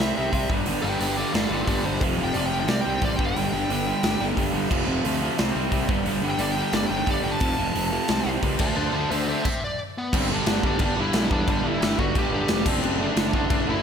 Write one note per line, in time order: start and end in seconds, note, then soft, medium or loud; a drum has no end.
0.00 0.11 C2 medium
0.00 0.17 C3 medium
0.00 0.17 G3 loud
0.00 0.16 C4 loud
0.00 0.48 E5 medium
0.00 snare loud
0.17 0.28 C2 medium
0.17 0.31 C3 medium
0.17 0.32 G3 medium
0.17 0.33 C4 medium
0.32 0.44 C2 medium
0.32 0.49 C3 loud
0.32 0.49 G3 medium
0.32 0.49 C4 loud
0.32 kick medium
0.32 open hi-hat medium
0.49 0.60 G1 medium
0.49 0.67 G2 medium
0.49 0.66 D3 loud
0.49 0.66 G3 loud
0.49 kick loud
0.66 0.78 G1 loud
0.66 0.82 G2 medium
0.66 0.83 D3 loud
0.66 0.84 G3 loud
0.66 open hi-hat medium
0.82 0.95 G1 medium
0.82 1.01 G2 medium
0.82 1.00 D3 loud
0.82 0.99 G3 loud
0.82 0.98 B4 medium
0.82 0.99 G5 medium
1.00 1.22 G1 medium
1.00 1.16 G2 medium
1.00 1.17 D3 medium
1.00 1.17 G3 loud
1.00 1.17 B4 medium
1.00 1.18 G5 medium
1.00 open hi-hat medium
1.17 1.34 G2 medium
1.17 1.33 D3 medium
1.17 1.33 G3 medium
1.17 1.33 D5 medium
1.17 1.34 F5 medium
1.34 1.45 G1 medium
1.34 1.49 G2 medium
1.34 1.50 D3 loud
1.34 1.50 G3 loud
1.34 1.50 D5 medium
1.34 1.51 F5 medium
1.34 snare loud
1.34 open hi-hat medium
1.50 1.61 G1 medium
1.50 1.67 G2 medium
1.50 1.67 D3 loud
1.50 1.66 G3 loud
1.50 1.67 F4 medium
1.50 1.67 D5 medium
1.67 1.78 G1 medium
1.67 1.83 G2 medium
1.67 1.84 D3 medium
1.67 1.85 G3 loud
1.67 1.84 F4 medium
1.67 1.84 D5 medium
1.67 kick medium
1.67 open hi-hat medium
1.84 2.01 G1 medium
1.84 2.00 G2 medium
1.84 2.01 D3 medium
1.84 2.01 G3 medium
1.84 2.01 C5 loud
2.01 2.12 F1 medium
2.01 2.18 F2 medium
2.01 2.18 C3 loud
2.01 2.17 F3 loud
2.01 kick loud
2.01 open hi-hat medium
2.18 2.29 F1 medium
2.18 2.34 F2 medium
2.18 2.34 C3 medium
2.18 2.35 F3 loud
2.24 2.35 G5 medium
2.33 2.68 F1 loud
2.33 2.52 F2 loud
2.33 2.51 C3 loud
2.33 2.50 F3 loud
2.33 2.45 D5 medium
2.33 open hi-hat medium
2.46 2.57 G5 medium
2.51 2.69 F2 medium
2.51 2.67 C3 medium
2.51 2.68 F3 loud
2.60 2.70 G5 medium
2.68 2.80 C2 medium
2.68 2.86 C3 loud
2.68 2.85 G3 medium
2.68 2.84 C4 loud
2.68 2.80 D5 medium
2.68 snare loud
2.68 open hi-hat medium
2.81 2.89 G5 medium
2.86 2.97 C2 medium
2.86 3.01 C3 medium
2.86 3.02 G3 medium
2.86 3.02 C4 loud
2.90 3.02 G5 medium
3.01 3.13 A1 medium
3.01 3.19 C3 loud
3.01 3.19 G3 loud
3.01 3.19 C4 loud
3.01 3.15 D5 medium
3.01 kick medium
3.01 open hi-hat medium
3.16 3.31 G1 medium
3.16 3.37 G2 loud
3.16 3.25 G5 medium
3.16 kick loud
3.20 3.37 D3 loud
3.20 3.36 G3 loud
3.27 4.24 G5 loud
3.36 3.47 G1 medium
3.36 3.53 G2 medium
3.36 3.54 D3 medium
3.36 3.54 G3 loud
3.36 open hi-hat medium
3.53 3.64 G1 medium
3.53 3.71 G2 medium
3.53 3.70 D3 medium
3.53 3.69 G3 medium
3.69 3.92 G1 loud
3.69 3.86 G2 medium
3.69 3.86 D3 loud
3.69 3.87 G3 loud
3.69 open hi-hat medium
3.87 4.04 G2 medium
3.87 4.03 D3 medium
3.87 4.02 G3 medium
4.03 4.15 G1 medium
4.03 4.19 G2 medium
4.03 4.20 D3 loud
4.03 4.20 G3 loud
4.03 snare loud
4.03 open hi-hat medium
4.20 4.32 G1 medium
4.20 4.37 G2 medium
4.20 4.36 D3 loud
4.20 4.36 G3 loud
4.37 4.49 G1 medium
4.37 4.52 G2 medium
4.37 4.53 D3 medium
4.37 4.53 G3 loud
4.37 kick medium
4.37 open hi-hat medium
4.53 4.65 G1 medium
4.53 4.69 G2 medium
4.53 4.70 D3 medium
4.53 4.70 G3 medium
4.70 4.82 F1 medium
4.70 4.87 F2 medium
4.70 4.86 C3 loud
4.70 4.86 F3 loud
4.70 kick loud
4.70 crash medium
4.87 4.98 F1 medium
4.87 5.03 F2 medium
4.87 5.04 C3 medium
4.87 5.05 F3 medium
5.04 5.27 D2 loud
5.04 5.21 F2 loud
5.04 5.21 C3 loud
5.04 5.20 F3 loud
5.04 open hi-hat medium
5.21 5.38 F2 medium
5.21 5.37 C3 medium
5.21 5.38 F3 medium
5.38 5.50 C2 medium
5.38 5.56 C3 medium
5.38 5.55 G3 loud
5.38 5.54 C4 loud
5.38 snare loud
5.38 open hi-hat medium
5.55 5.67 C2 medium
5.55 5.71 C3 medium
5.55 5.71 G3 medium
5.55 5.71 C4 medium
5.72 5.83 C2 medium
5.72 5.88 C3 loud
5.72 5.89 G3 loud
5.72 5.89 C4 loud
5.72 kick medium
5.72 open hi-hat medium
5.88 6.00 G1 medium
5.88 6.05 G2 loud
5.88 6.05 D3 loud
5.88 6.05 G3 loud
5.88 kick loud
6.05 6.17 G1 medium
6.05 6.22 G2 medium
6.05 6.23 D3 loud
6.05 6.23 G3 loud
6.05 open hi-hat medium
6.22 6.33 G1 medium
6.22 6.40 G2 medium
6.22 6.40 D3 loud
6.22 6.39 G3 loud
6.30 6.41 G5 loud
6.38 6.61 G1 medium
6.38 6.56 G2 loud
6.38 6.56 D3 loud
6.38 6.57 G3 loud
6.38 6.50 D5 medium
6.38 open hi-hat medium
6.52 6.61 G5 loud
6.57 6.74 G2 medium
6.57 6.73 D3 loud
6.57 6.72 G3 medium
6.62 6.74 G5 medium
6.73 6.84 G1 medium
6.73 6.89 G2 medium
6.73 6.89 D3 medium
6.73 6.91 G3 loud
6.73 6.85 D5 medium
6.73 snare loud
6.73 open hi-hat medium
6.87 7.02 G1 medium
6.87 7.08 G2 medium
6.87 6.97 G5 medium
6.91 7.07 D3 medium
6.91 7.06 G3 loud
6.98 7.08 G5 loud
7.07 7.19 G1 medium
7.07 7.22 G2 medium
7.07 7.23 D3 medium
7.07 7.23 G3 loud
7.07 7.20 D5 loud
7.07 kick medium
7.07 open hi-hat medium
7.23 7.36 G1 medium
7.23 7.40 G2 medium
7.23 7.40 D3 medium
7.23 7.41 G3 loud
7.23 7.33 G5 medium
7.31 8.29 A5 loud
7.40 7.52 F1 loud
7.40 7.58 F2 loud
7.40 7.57 C3 loud
7.40 7.56 F3 loud
7.40 kick loud
7.40 open hi-hat medium
7.57 7.70 F1 medium
7.57 7.73 F2 medium
7.57 7.73 C3 medium
7.57 7.74 F3 loud
7.74 7.98 F1 loud
7.74 7.91 F2 loud
7.74 7.90 C3 loud
7.74 7.90 F3 loud
7.74 open hi-hat medium
7.91 8.08 F2 medium
7.91 8.07 C3 medium
7.91 8.08 F3 medium
8.08 8.20 C2 medium
8.08 8.25 C3 medium
8.08 8.24 G3 loud
8.08 8.24 C4 loud
8.08 snare loud
8.08 open hi-hat medium
8.25 8.37 C2 medium
8.25 8.40 C3 medium
8.25 8.42 G3 medium
8.25 8.42 C4 medium
8.42 8.54 C#2 medium
8.42 8.58 C3 loud
8.42 8.59 G3 loud
8.42 8.59 C4 loud
8.42 kick medium
8.42 open hi-hat medium
8.59 8.71 D2 medium
8.59 8.76 D3 loud
8.59 8.75 A3 loud
8.59 8.75 D4 loud
8.59 8.76 C5 medium
8.59 8.76 A5 medium
8.59 kick loud
8.59 crash loud
8.76 8.87 D2 loud
8.76 8.92 D3 medium
8.76 8.93 A3 loud
8.76 8.94 D4 loud
8.76 8.93 C5 medium
8.76 8.93 A5 medium
8.93 9.05 D2 medium
8.93 9.11 D3 medium
8.93 9.10 A3 medium
8.93 9.09 D4 medium
8.93 9.09 C5 medium
8.93 9.11 A5 medium
9.10 9.33 D2 medium
9.10 9.26 D3 loud
9.10 9.27 A3 loud
9.10 9.27 D4 loud
9.10 9.26 C5 medium
9.10 9.27 E5 medium
9.10 open hi-hat medium
9.27 9.43 D3 medium
9.27 9.44 A3 medium
9.27 9.44 D4 medium
9.27 9.43 C5 medium
9.27 9.44 E5 medium
9.44 9.60 C5 medium
9.44 9.61 E5 medium
9.44 kick loud
9.44 crash loud
9.64 9.79 D5 medium
9.98 10.16 B3 medium
10.13 10.39 G1 loud
10.13 10.30 G2 medium
10.13 10.29 D3 loud
10.13 10.29 G3 loud
10.13 10.32 C4 loud
10.13 kick loud
10.13 crash loud
10.13 crash medium
10.29 10.46 G2 medium
10.29 10.46 D3 medium
10.29 10.47 G3 loud
10.29 10.62 D4 loud
10.46 10.59 G1 loud
10.46 10.63 G2 loud
10.46 10.63 D3 loud
10.46 10.62 G3 loud
10.46 snare loud
10.46 crash medium
10.63 10.76 G1 medium
10.63 10.79 G2 medium
10.63 10.79 D3 medium
10.63 10.80 G3 medium
10.63 10.82 D4 loud
10.63 kick medium
10.79 11.06 G1 medium
10.79 10.97 G2 medium
10.79 10.95 D3 medium
10.79 10.95 G3 loud
10.79 kick loud
10.79 crash medium
10.85 11.00 D4 loud
10.96 11.12 G2 loud
10.96 11.13 D3 loud
10.96 11.13 G3 loud
11.01 11.31 E4 loud
11.13 11.27 B1 loud
11.13 11.30 G2 medium
11.13 11.29 D3 medium
11.13 11.28 G3 loud
11.13 snare loud
11.13 crash medium
11.29 11.44 E2 medium
11.29 11.45 G2 medium
11.29 11.46 D3 medium
11.29 11.47 G3 loud
11.29 11.49 D4 loud
11.29 kick loud
11.46 11.74 G1 loud
11.46 11.63 G2 medium
11.46 11.62 D3 loud
11.46 11.62 G3 loud
11.46 11.67 D4 loud
11.46 kick loud
11.46 crash medium
11.63 11.79 G2 medium
11.63 11.80 D3 medium
11.63 11.81 G3 medium
11.67 11.99 E4 loud
11.80 11.94 G1 loud
11.80 11.98 G2 loud
11.80 11.97 D3 loud
11.80 11.96 G3 loud
11.80 snare loud
11.80 crash medium
11.97 12.11 G1 medium
11.97 12.14 G2 medium
11.97 12.15 D3 medium
11.97 12.16 G3 loud
11.97 12.15 F#4 loud
11.97 kick medium
12.15 12.41 G1 medium
12.15 12.32 G2 medium
12.15 12.32 D3 medium
12.15 12.31 G3 medium
12.15 12.34 G4 loud
12.15 kick loud
12.15 crash medium
12.32 12.49 G2 medium
12.32 12.49 D3 loud
12.32 12.50 G3 loud
12.32 12.65 G4 loud
12.48 12.62 F1 medium
12.48 12.65 G2 medium
12.48 12.65 D3 medium
12.48 12.66 G3 loud
12.48 snare loud
12.48 crash medium
12.66 12.79 F#1 medium
12.66 12.84 D3 loud
12.66 12.84 A3 loud
12.66 12.98 C4 loud
12.66 12.83 D4 loud
12.66 kick loud
12.66 crash loud
12.83 13.09 F#1 loud
12.83 12.99 D3 medium
12.83 13.00 A3 loud
12.83 13.01 D4 loud
12.83 crash medium
13.00 13.17 D3 loud
13.00 13.18 A3 loud
13.00 13.17 D4 loud
13.00 13.34 D4 loud
13.16 13.30 F#1 loud
13.16 13.33 D3 medium
13.16 13.35 A3 loud
13.16 13.35 D4 loud
13.16 snare loud
13.16 crash medium
13.33 13.46 F#1 medium
13.33 13.51 D3 medium
13.33 13.51 A3 medium
13.33 13.50 D4 loud
13.33 kick loud
13.50 13.77 F#1 loud
13.50 13.67 D3 medium
13.50 13.68 A3 medium
13.50 13.69 D4 loud
13.50 13.66 D4 loud
13.50 kick loud
13.50 crash medium
13.68 13.82 D3 loud
13.68 13.82 A3 loud
13.68 13.82 D4 loud
13.68 13.82 E4 loud